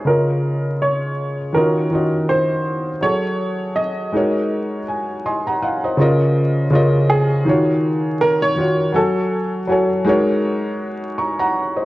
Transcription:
0.05 felt piano C#3 C#4 F4 A#4, upright piano A#4
0.09 felt piano D#5
0.82 upright piano C#5
1.53 felt piano D#3 C#4 F4 F#4, upright piano A#4
1.57 felt piano D#5
1.90 felt piano D#3 C#4 F4 F#4
1.95 felt piano D#5
2.29 upright piano C5
3.01 felt piano F#3 F#4 G#4 A4, upright piano C#5
3.06 felt piano C#5
3.76 upright piano D#5
4.12 felt piano G#3 D#4 F#4 A#4
4.16 felt piano C#5
4.88 felt piano G#5
5.25 felt piano D#5 G#5 C6
5.47 felt piano F#5 A#5
5.62 felt piano D#5 F5 F#5
5.84 felt piano C5 D#5
5.97 felt piano C#3 C#4 F4 A#4
6.01 felt piano D#5
6.71 felt piano C#3 C#4 F4 A#4
6.75 felt piano D#5
7.10 upright piano G#4
7.45 felt piano D#3 D#4 F4 F#4
7.49 felt piano C#5
8.21 upright piano A#4
8.42 upright piano C#5
8.56 felt piano D#3 D#4 F4 F#4
8.60 felt piano C#5
8.92 felt piano F#3 F#4 A4 G#5, upright piano A4
8.97 felt piano C#5
9.67 felt piano F#3 F#4 A4 G#5
9.72 felt piano C#5
10.05 felt piano G#3 D#4 F#4 A#4
10.09 felt piano C#5
11.18 felt piano A#5 C#6
11.39 felt piano F#5 A#5
11.76 felt piano C5 D#5

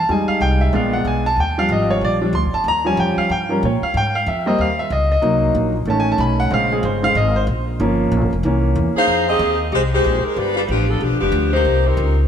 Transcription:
0.09 upright bass F2, grand piano G3 G#3 D#4 G#5
0.28 grand piano F5, muted upright bass stroke
0.41 upright bass C2, grand piano G5
0.61 grand piano E5
0.73 upright bass A#1, grand piano G#3 B3 D4 F5
0.93 grand piano F#5
1.05 upright bass B1, grand piano G#5
1.26 grand piano A5
1.37 upright bass D#2, grand piano G5
1.58 grand piano F3 G3 D4 F5
1.69 upright bass G#1, grand piano D#5
1.91 grand piano C#5
2.01 upright bass A#1, grand piano D5
2.21 grand piano F3 G3 D4
2.33 upright bass D2, grand piano C6
2.43 upright bass A#1
2.54 grand piano A5
2.64 upright bass D#2
2.68 grand piano A#5
2.85 grand piano F3 G3 C#4 G#5
2.97 upright bass F2, grand piano G5
3.17 grand piano F5, muted upright bass stroke
3.29 upright bass G2, grand piano G5
3.49 grand piano F3 G3 C#4 A#4
3.63 upright bass A#2, grand piano C#5
3.82 grand piano F5, muted upright bass stroke
3.94 upright bass G#2, grand piano G5
4.15 grand piano F5
4.26 upright bass F2, grand piano E5
4.46 grand piano G3 A#3 C4 D#5
4.58 upright bass D#2, grand piano F5
4.79 grand piano E5
4.90 upright bass C#2, grand piano D#5
5.12 grand piano D#5
5.22 upright bass C2, grand piano F#3 A#3 D#4
5.55 upright bass A#1
5.85 upright bass A1, grand piano D#3 A3 C#4
5.90 grand piano A5
6.00 grand piano G#5
6.12 grand piano A5
6.18 upright bass B1, grand piano B5
6.40 grand piano F#5
6.50 upright bass A#1, grand piano C#3 G#3 C4 F5
6.72 grand piano G#4
6.83 upright bass G1, grand piano C5
7.03 grand piano C#3 G#3 C4 F5
7.15 upright bass G#1, grand piano D#5
7.36 grand piano C5
7.47 upright bass A#1
7.80 upright bass G1, grand piano F3 A#3 C#4
8.12 upright bass A#1
8.22 upright bass G1
8.33 upright bass F1
8.43 upright bass C2, grand piano E3 A#3 C#4
8.76 upright bass E2
8.94 saxophone section D#4 G#4 C5 F5, muted upright bass stroke
9.07 upright bass F2
9.28 saxophone section C4 G4 G#4 D#5
9.39 upright bass D#2
9.72 upright bass C2, saxophone section G#3 D#4 G4 C5
9.93 saxophone section G#3 D#4 G4 C5
10.04 upright bass A#1
10.24 saxophone section G#3 D#4 G4 A#4, muted upright bass stroke
10.37 upright bass G1, saxophone section G3 D4 F4 B4
10.56 saxophone section G3 D4 F4 B4
10.69 upright bass A1, saxophone section F3 B3 D4 G4
10.88 saxophone section F3 B3 D4 A4
11.01 upright bass B1, saxophone section F3 B3 D4 G4
11.11 upright bass G1
11.20 upright bass F1, saxophone section F3 B3 D4 G4
11.32 upright bass D2
11.53 saxophone section A#3 D#4 G4 C5
11.65 upright bass C2
11.86 saxophone section G3 C4 D#4 A#4
11.97 upright bass C#2

